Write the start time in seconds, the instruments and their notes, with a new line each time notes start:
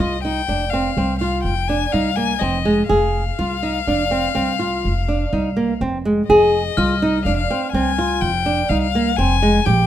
0.00 upright bass C2, nylon-string guitar F4, violin D#5
0.23 nylon-string guitar D#4, violin G5
0.48 upright bass F1, nylon-string guitar D4
0.70 nylon-string guitar C4, violin F5
0.97 upright bass C2, nylon-string guitar C4
1.19 nylon-string guitar F4, violin F5
1.43 upright bass F1, violin G5
1.68 nylon-string guitar D4, violin G#5
1.92 upright bass C2, nylon-string guitar D#4, violin F5
2.16 nylon-string guitar A#3, violin G#5
2.39 upright bass F1, nylon-string guitar C4, violin D#5
2.65 nylon-string guitar G#3
2.89 upright bass F1, nylon-string guitar G#4, violin F5
3.39 upright bass C2, nylon-string guitar F4
3.63 nylon-string guitar D#4
3.87 upright bass F1, nylon-string guitar D4
4.11 nylon-string guitar C4
4.35 upright bass C2, nylon-string guitar C4
4.59 nylon-string guitar F4
4.85 upright bass F1
5.08 nylon-string guitar D4
5.33 upright bass C2, nylon-string guitar D#4
5.56 nylon-string guitar A#3
5.81 upright bass F1, nylon-string guitar C4
6.05 nylon-string guitar G#3
6.28 upright bass F1, nylon-string guitar G#4, violin D#5
6.77 upright bass C2, nylon-string guitar F4, glockenspiel F6
7.02 nylon-string guitar D#4
7.25 upright bass F1, nylon-string guitar D4, violin F5
7.37 violin F5
7.50 nylon-string guitar C4
7.72 upright bass C2, nylon-string guitar C4, violin G#5
7.98 nylon-string guitar F4
8.21 upright bass F1, violin G5
8.46 nylon-string guitar D4
8.69 upright bass C2, nylon-string guitar D#4, violin F5
8.82 violin F5
8.95 nylon-string guitar A#3
9.16 upright bass F1, nylon-string guitar C4, violin G#5
9.42 nylon-string guitar G#3
9.66 upright bass A#1, nylon-string guitar G4, violin G5